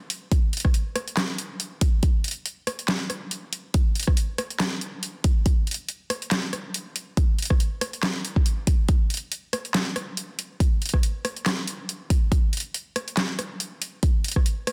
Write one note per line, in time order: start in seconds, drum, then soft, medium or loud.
0.10 open hi-hat loud
0.32 kick loud
0.32 closed hi-hat medium
0.53 closed hi-hat medium
0.57 closed hi-hat medium
0.60 closed hi-hat medium
0.65 kick medium
0.65 cross-stick medium
0.74 closed hi-hat medium
0.96 cross-stick medium
0.96 open hi-hat medium
1.08 closed hi-hat soft
1.17 cross-stick medium
1.17 snare loud
1.17 clap medium
1.17 closed hi-hat medium
1.38 closed hi-hat medium
1.60 closed hi-hat medium
1.81 kick loud
1.81 open hi-hat loud
2.03 kick loud
2.03 closed hi-hat medium
2.24 closed hi-hat medium
2.28 closed hi-hat medium
2.31 closed hi-hat medium
2.46 closed hi-hat medium
2.67 cross-stick medium
2.67 open hi-hat medium
2.79 closed hi-hat soft
2.88 snare loud
2.88 clap loud
2.88 closed hi-hat medium
3.10 cross-stick medium
3.10 closed hi-hat medium
3.31 closed hi-hat medium
3.53 open hi-hat medium
3.74 kick loud
3.74 closed hi-hat medium
3.95 closed hi-hat medium
4.00 closed hi-hat medium
4.03 closed hi-hat medium
4.07 kick medium
4.07 cross-stick medium
4.17 closed hi-hat medium
4.38 cross-stick medium
4.38 open hi-hat medium
4.50 closed hi-hat soft
4.60 cross-stick medium
4.60 snare loud
4.60 clap loud
4.60 closed hi-hat medium
4.81 closed hi-hat medium
5.03 closed hi-hat medium
5.24 kick loud
5.24 open hi-hat medium
5.46 kick loud
5.46 closed hi-hat medium
5.67 closed hi-hat soft
5.71 closed hi-hat medium
5.74 closed hi-hat medium
5.88 closed hi-hat medium
6.10 cross-stick medium
6.10 open hi-hat medium
6.22 closed hi-hat soft
6.31 snare loud
6.31 clap loud
6.31 closed hi-hat medium
6.53 cross-stick medium
6.53 closed hi-hat medium
6.74 closed hi-hat medium
6.96 open hi-hat medium
7.17 kick loud
7.17 closed hi-hat medium
7.39 closed hi-hat soft
7.42 closed hi-hat medium
7.45 closed hi-hat medium
7.50 kick medium
7.50 cross-stick medium
7.60 closed hi-hat medium
7.81 cross-stick medium
7.81 open hi-hat medium
7.93 closed hi-hat soft
8.03 cross-stick medium
8.03 snare loud
8.03 clap loud
8.03 closed hi-hat medium
8.25 closed hi-hat soft
8.36 kick medium
8.46 closed hi-hat medium
8.67 kick loud
8.67 open hi-hat medium
8.88 kick loud
8.88 closed hi-hat medium
9.10 closed hi-hat soft
9.14 closed hi-hat medium
9.17 closed hi-hat medium
9.32 closed hi-hat medium
9.53 cross-stick medium
9.53 open hi-hat medium
9.65 closed hi-hat soft
9.74 snare loud
9.74 clap medium
9.74 closed hi-hat medium
9.96 cross-stick medium
9.96 closed hi-hat soft
10.17 closed hi-hat medium
10.39 open hi-hat medium
10.60 kick loud
10.60 closed hi-hat medium
10.82 closed hi-hat soft
10.86 closed hi-hat medium
10.89 closed hi-hat medium
10.94 kick medium
10.94 cross-stick medium
11.03 closed hi-hat medium
11.25 cross-stick medium
11.25 open hi-hat medium
11.37 closed hi-hat soft
11.46 cross-stick medium
11.46 snare loud
11.46 clap medium
11.46 closed hi-hat medium
11.67 closed hi-hat medium
11.89 closed hi-hat medium
12.10 kick loud
12.10 open hi-hat loud
12.32 kick loud
12.32 closed hi-hat medium
12.53 closed hi-hat medium
12.57 closed hi-hat medium
12.60 closed hi-hat medium
12.74 closed hi-hat medium
12.96 cross-stick medium
12.96 open hi-hat medium
13.08 closed hi-hat soft
13.17 snare loud
13.17 clap medium
13.17 closed hi-hat medium
13.39 cross-stick medium
13.39 closed hi-hat medium
13.60 closed hi-hat medium
13.82 open hi-hat loud
14.03 kick loud
14.03 closed hi-hat medium
14.24 closed hi-hat medium
14.28 closed hi-hat medium
14.31 closed hi-hat medium
14.36 kick medium
14.36 cross-stick medium
14.46 closed hi-hat medium
14.67 cross-stick medium
14.67 open hi-hat medium